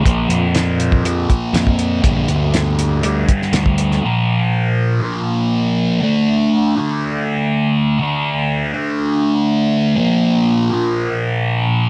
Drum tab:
HH |x-x-x-x-x-x-x-x-|x-x-x-x-x-x-x-x-|----------------|----------------|
SD |----o-------o---|----o------oo--o|----------------|----------------|
BD |o------o--o--o--|o---------o--o--|----------------|----------------|

HH |----------------|----------------|
SD |----------------|----------------|
BD |----------------|----------------|